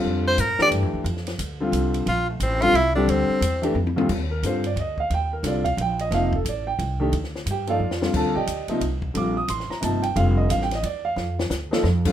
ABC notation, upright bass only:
X:1
M:3/4
L:1/8
Q:"Swing" 1/4=178
K:Bblyd
V:1 name="Upright bass" clef=bass
F,,2 A,, z (3G,, F,, D,, | F,,2 D,,2 C,,2 | B,,,2 A,,,2 C,,2 | D,, z E,,2 F,,2 |
[K:Eblyd] E,,2 G,,2 D,,2 | E,,2 C,,2 B,,,2 | F,,,2 A,,,2 C,,2 | D,,2 G,,2 F,,2 |
(3E,, D,, B,,, D,, z C,,2 | B,,,2 A,,, z G,,,2 | F,,,2 A,,,2 _F,,2 | F,,2 D,,2 F,,2 |]